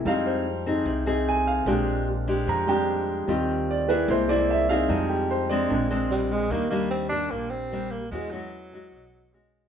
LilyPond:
<<
  \new Staff \with { instrumentName = "Grand piano" } { \time 4/4 \key ees \major \tempo 4 = 149 f''8 c''4. r4 aes''8 f''8~ | f''4 r4 bes''8 g''4. | r4 d''8 ces''8 c''8 d''8 e''8 f''8 | ees''8 g'8 c''8 d''2~ d''16 r16 |
r1 | r1 | }
  \new Staff \with { instrumentName = "Grand piano" } { \time 4/4 \key ees \major <g aes ees'>8 r2. r8 | <aes c' d'>2~ <aes c' d'>8 <g aes c' d'>8 r4 | <g c' f'>2 <aes bes e'>2 | <g aes ees'>8 r4. <aes c' d'>2 |
r1 | r1 | }
  \new Staff \with { instrumentName = "Nylon-string guitar" } { \time 4/4 \key ees \major << { <c' ees' aes'>4 r8 <c' ees' aes'>4 <c' ees' aes'>4. | <aes d' g'>4 r8 <aes d' g'>4 <aes d' g'>4. | <c' f' g'>4. <bes fes' aes'>4 <bes e' aes'>4 <c' ees' aes'>8~ | <c' ees' aes'>4. <aes c' d'>4 <aes c' d'>4. |
<g bes d'>8 <g bes d'>4 <g bes d'>4. <g bes d'>8 r8 | <gis cis' fis'>8 <gis cis' fis'>4 <gis cis' fis'>4. <gis cis' fis'>4 | } \\ { f2 c2 | bes,2 f2 | ees2 c2 | f2 bes,2 |
ees2 bes,2 | e2 b,2 | } >> }
  \new Staff \with { instrumentName = "Tenor saxophone" } { \time 4/4 \key ees \major r1 | r1 | r1 | r2. g8 aes8 |
bes8 bes8 c'8 d'8 bes8 c'4 bes8 | gis8 fis2~ fis8 gis4 | }
  \new Staff \with { instrumentName = "Upright bass" } { \clef bass \time 4/4 \key ees \major f,2 c,2 | bes,,2 f,2 | ees,2 c,2 | f,2 bes,,2 |
ees,2 bes,,2 | e,2 b,,2 | }
>>